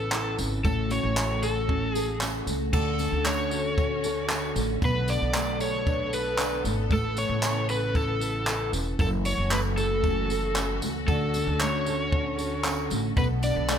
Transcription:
Already playing: upright bass A1, string section C#3 B3 A4, nylon-string guitar A3 C#4 E4 B4, electric slide guitar A4
0.12 nylon-string guitar E4, clap, tambourine
0.38 upright bass G#1, nylon-string guitar C#4, tambourine
0.64 upright bass A1, nylon-string guitar A2, string section A3 F#4, electric slide guitar A4, kick, tambourine
0.90 nylon-string guitar C#4, electric slide guitar C#5, tambourine
1.03 upright bass A1
1.16 nylon-string guitar A3, clap, tambourine
1.42 nylon-string guitar A4, electric slide guitar A4, tambourine
1.69 nylon-string guitar C#4, kick
1.94 electric slide guitar G#4, nylon-string guitar A4, tambourine
2.21 nylon-string guitar C#4, clap, tambourine
2.47 upright bass C#2, nylon-string guitar A3, tambourine
2.73 upright bass D2, nylon-string guitar D3, string section D3 C#4 F#4, electric slide guitar A4, kick, crash, tambourine
2.99 nylon-string guitar C#4, tambourine
3.12 upright bass D2
3.25 nylon-string guitar A3, electric slide guitar C#5, clap, tambourine
3.51 nylon-string guitar A4, tambourine
3.78 nylon-string guitar C#4, kick, tambourine
4.04 nylon-string guitar A4, tambourine
4.30 nylon-string guitar C#4, clap, tambourine
4.56 upright bass A1, nylon-string guitar A3, tambourine
4.82 upright bass B1, nylon-string guitar B2, string section B3 A4, electric slide guitar B4, kick, tambourine
5.08 nylon-string guitar D4, electric slide guitar D5, tambourine
5.21 upright bass B1
5.34 nylon-string guitar A3, clap, tambourine
5.60 nylon-string guitar A4, electric slide guitar C#5, tambourine
5.86 nylon-string guitar D4, kick, tambourine
6.13 nylon-string guitar A4, electric slide guitar B4, tambourine
6.38 nylon-string guitar D4, clap, tambourine
6.64 upright bass G#1, nylon-string guitar A3, tambourine
6.90 upright bass A1, string section C#3, nylon-string guitar A3, electric slide guitar A4, kick, tambourine
7.17 nylon-string guitar E4, electric slide guitar C#5, tambourine
7.29 upright bass A1
7.43 nylon-string guitar C#4, clap, tambourine
7.68 nylon-string guitar B4, electric slide guitar B4, tambourine
7.94 nylon-string guitar E4, electric slide guitar A4, kick, tambourine
8.20 nylon-string guitar B4, tambourine
8.47 nylon-string guitar E4, clap, tambourine
8.73 upright bass E1, nylon-string guitar C#4, tambourine
8.99 upright bass F#1, nylon-string guitar F#2, string section E3 A3 F#4, electric slide guitar A4, kick, tambourine
9.25 nylon-string guitar C#4, electric slide guitar C#5, tambourine
9.38 upright bass F#1
9.51 nylon-string guitar A3, electric slide guitar B4, clap, tambourine
9.77 nylon-string guitar A4, electric slide guitar A4, tambourine
10.03 nylon-string guitar C#4, kick, tambourine
10.30 nylon-string guitar A4, tambourine
10.56 nylon-string guitar C#4, clap, tambourine
10.81 upright bass C#2, nylon-string guitar A3, tambourine
11.08 upright bass D2, nylon-string guitar D3, string section D3 C#4, electric slide guitar A4, kick, tambourine
11.34 nylon-string guitar C#4, tambourine
11.47 upright bass D2
11.60 nylon-string guitar A3, electric slide guitar C#5, clap, tambourine
11.86 nylon-string guitar A4, tambourine
12.12 nylon-string guitar C#4, kick
12.38 nylon-string guitar A4, tambourine
12.64 nylon-string guitar C#4, clap, tambourine
12.90 upright bass A1, nylon-string guitar A3, tambourine
13.16 upright bass B1, nylon-string guitar B2, string section D3 B3 A4, electric slide guitar B4, kick, tambourine
13.43 nylon-string guitar D4, electric slide guitar D5, tambourine
13.56 upright bass B1
13.69 nylon-string guitar A3, clap, tambourine

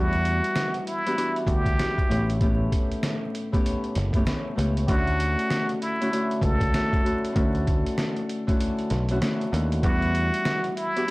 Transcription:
Already playing: picked electric bass E2, harp E3 G3 B3 D4 F#4, muted trumpet F#4
0.13 closed hi-hat
0.25 closed hi-hat
0.44 closed hi-hat
0.56 snare, closed hi-hat
0.74 closed hi-hat
0.86 muted trumpet E4, closed hi-hat
1.06 harp E3 B3 D4 F#4 G4, closed hi-hat
1.16 harp E3 B3 D4 F#4 G4, closed hi-hat
1.36 closed hi-hat
1.47 picked electric bass D2, muted trumpet G4, kick, closed hi-hat
1.66 kick, closed hi-hat
1.78 harp E3 B3 D4 F#4 G4, snare, closed hi-hat
1.98 kick, closed hi-hat
2.09 picked electric bass A1, harp A2 A3 B3 C#4 G4, closed hi-hat
2.30 closed hi-hat
2.41 harp A2 A3 B3 C#4 G4, kick, closed hi-hat
2.72 kick, closed hi-hat
2.92 closed hi-hat
3.03 snare, closed hi-hat
3.35 closed hi-hat
3.52 harp A2 A3 B3 C#4 G4, kick, closed hi-hat
3.66 closed hi-hat
3.84 closed hi-hat
3.95 picked electric bass F#1, snare, closed hi-hat
4.13 harp A2 A3 B3 C#4 G4, kick, closed hi-hat
4.26 harp A2 A3 B3 C#4 G4, snare, closed hi-hat
4.56 picked electric bass C#2, harp A2 A3 B3 C#4 G4, closed hi-hat
4.77 closed hi-hat
4.88 picked electric bass D2, harp D3 A3 C#4 E4 F#4, muted trumpet F#4, kick, closed hi-hat
5.07 closed hi-hat
5.20 closed hi-hat
5.39 closed hi-hat
5.50 snare, closed hi-hat
5.69 closed hi-hat
5.81 muted trumpet E4, closed hi-hat
6.01 harp D3 A3 C#4 E4 F#4, closed hi-hat
6.12 harp D3 A3 C#4 E4 F#4, closed hi-hat
6.31 closed hi-hat
6.42 picked electric bass C#2, muted trumpet A4, kick, closed hi-hat
6.61 kick, closed hi-hat
6.74 harp D3 A3 C#4 E4 F#4, snare, closed hi-hat
6.93 kick, closed hi-hat
7.03 harp D3 A3 C#4 E4 F#4, closed hi-hat
7.25 closed hi-hat
7.32 picked electric bass D2, harp D3 A3 E4, kick, closed hi-hat
7.36 harp C#4 F#4
7.55 closed hi-hat
7.67 kick, closed hi-hat
7.86 closed hi-hat
7.98 snare, closed hi-hat
8.17 closed hi-hat
8.29 closed hi-hat
8.47 harp D3 A3 C#4 E4 F#4, kick, closed hi-hat
8.61 closed hi-hat
8.79 closed hi-hat
8.90 picked electric bass B1, snare, closed hi-hat
9.09 harp D3 A3 C#4 E4 F#4, closed hi-hat
9.20 harp D3 A3 C#4 E4 F#4, snare, closed hi-hat
9.41 closed hi-hat
9.51 picked electric bass D#2, harp D3 A3 C#4 E4 F#4, closed hi-hat
9.72 closed hi-hat
9.83 picked electric bass E2, harp E3 G3 B3 D4 F#4, muted trumpet F#4, kick, closed hi-hat
10.02 closed hi-hat
10.15 closed hi-hat
10.34 closed hi-hat
10.45 snare, closed hi-hat
10.64 closed hi-hat
10.76 muted trumpet E4, closed hi-hat
10.96 harp E3 B3 D4 F#4 G4, closed hi-hat
11.06 harp E3 B3 D4 F#4 G4

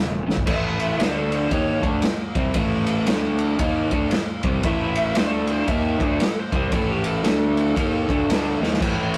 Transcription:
Already playing: fingered electric bass E1, overdriven electric guitar E2 C#3
0.27 fingered electric bass G#1, overdriven electric guitar E2 C#3, snare
0.37 kick
0.47 fingered electric bass A1, overdriven electric guitar A2 E3 A3, lead electric guitar E5, kick, crash
0.80 ride
0.98 fingered electric bass D2, overdriven electric guitar D3 A3 D4, lead electric guitar C5, snare, ride
1.18 lead electric guitar A4
1.32 lead electric guitar C5, ride
1.51 fingered electric bass D#2, overdriven electric guitar D#3 A#3 D#4, lead electric guitar C#5, kick, ride
1.82 fingered electric bass D2, overdriven electric guitar D3 A3 D4, kick, ride
2.02 muted overdriven electric guitar stroke, muted fingered electric bass stroke, snare, ride
2.35 fingered electric bass C2, overdriven electric guitar C3 G3 C4, kick, ride
2.54 fingered electric bass A1, overdriven electric guitar A2 E3 A3, kick, ride
2.86 ride
3.06 fingered electric bass D2, overdriven electric guitar D3 A3 D4, snare, ride
3.38 ride
3.59 fingered electric bass D#2, overdriven electric guitar D#3 A#3 D#4, kick, ride
3.91 fingered electric bass D2, overdriven electric guitar D3 A3 D4, kick, ride
4.11 muted overdriven electric guitar stroke, muted fingered electric bass stroke, snare, ride
4.43 fingered electric bass C2, overdriven electric guitar C3 G3 C4, kick, ride
4.63 fingered electric bass A1, overdriven electric guitar A2 E3 A3, lead electric guitar E5, kick, ride
4.95 ride
5.15 fingered electric bass D2, overdriven electric guitar D3 A3 D4, lead electric guitar C5, snare, ride
5.33 lead electric guitar A4
5.47 ride
5.52 lead electric guitar C5
5.67 fingered electric bass D#2, overdriven electric guitar D#3 A#3 D#4, lead electric guitar E5, kick, ride
6.00 fingered electric bass D2, overdriven electric guitar D3 A3 D4, kick, ride
6.20 lead electric guitar A4, muted fingered electric bass stroke, muted overdriven electric guitar stroke, snare, ride
6.40 lead electric guitar C5
6.52 fingered electric bass C2, overdriven electric guitar C3 G3 C4, kick, ride
6.72 fingered electric bass A1, overdriven electric guitar A2 E3 A3, lead electric guitar A4, kick, ride
6.89 lead electric guitar G4
7.04 lead electric guitar A4, ride
7.24 fingered electric bass D2, overdriven electric guitar D3 A3 D4, snare, ride
7.57 ride
7.76 fingered electric bass D#2, overdriven electric guitar D#3 A#3 D#4, kick, ride
8.09 fingered electric bass D2, overdriven electric guitar D3 A3 D4, kick, ride
8.29 fingered electric bass D2, overdriven electric guitar D3 A3 D4, snare, ride
8.60 fingered electric bass D#2, overdriven electric guitar D#3 A#3 D#4, snare
8.73 snare
8.80 fingered electric bass A1, overdriven electric guitar A2 E3 A3, kick, ride, crash
9.14 ride

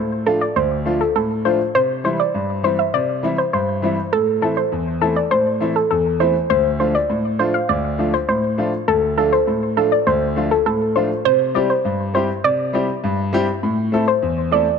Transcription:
Already playing: grand piano A2
0.26 grand piano F3 A3 D4 F4, synth pluck A4
0.41 synth pluck D5
0.56 grand piano D2, synth pluck C5
0.85 grand piano F3 A3 D4 F4
1.01 synth pluck A4
1.16 grand piano A2, synth pluck A4
1.45 grand piano F3 A3 D4 F4, synth pluck C5
1.75 grand piano C3, synth pluck C5
2.04 grand piano E3 G3 C4 E4, synth pluck C5
2.20 synth pluck D5
2.34 grand piano G2
2.63 grand piano E3 G3 C4 E4, synth pluck C5
2.79 synth pluck E5
2.94 grand piano C3, synth pluck D5
3.23 grand piano E3 G3 C4 E4
3.38 synth pluck C5
3.53 grand piano G2, synth pluck C5
3.82 grand piano E3 G3 C4 E4
4.13 grand piano A2, synth pluck A4
4.42 grand piano E3 A3 C4 E4, synth pluck A4
4.57 synth pluck C5
4.72 grand piano E2
5.01 grand piano E3 A3 C4 E4, synth pluck A4
5.16 synth pluck D5
5.31 grand piano A2, synth pluck C5
5.61 grand piano E3 A3 C4 E4
5.76 synth pluck A4
5.91 grand piano E2, synth pluck A4
6.20 grand piano E3 A3 C4 E4, synth pluck C5
6.50 grand piano D2, synth pluck C5
6.79 grand piano F3 A3 D4 F4, synth pluck C5
6.95 synth pluck D5
7.10 grand piano A2
7.39 grand piano F3 A3 D4 F4, synth pluck C5
7.54 synth pluck F5
7.69 grand piano D2, synth pluck D5
7.98 grand piano F3 A3 D4 F4
8.14 synth pluck C5
8.28 grand piano A2, synth pluck C5
8.57 grand piano F3 A3 D4 F4
8.88 grand piano D2, synth pluck A4
9.17 grand piano F3 A3 D4 F4, synth pluck A4
9.33 synth pluck C5
9.47 grand piano A2
9.76 grand piano F3 A3 D4 F4, synth pluck A4
9.92 synth pluck D5
10.07 grand piano D2, synth pluck C5
10.36 grand piano F3 A3 D4 F4
10.51 synth pluck A4
10.66 grand piano A2, synth pluck A4
10.95 grand piano F3 A3 D4 F4, synth pluck C5
11.25 grand piano C3, synth pluck C5
11.54 grand piano G3 C4 E4 G4, synth pluck D5
11.70 synth pluck C5
11.85 grand piano G2
12.14 grand piano G3 C4 E4 G4, synth pluck C5
12.44 grand piano C3, synth pluck D5
12.73 grand piano G3 C4 E4 G4
13.04 grand piano G2
13.33 grand piano G3 C4 E4 G4
13.63 grand piano A2
13.92 grand piano A3 C4 E4 A4
14.08 synth pluck C5
14.23 grand piano E2
14.52 grand piano A3 C4 E4 A4, synth pluck D5

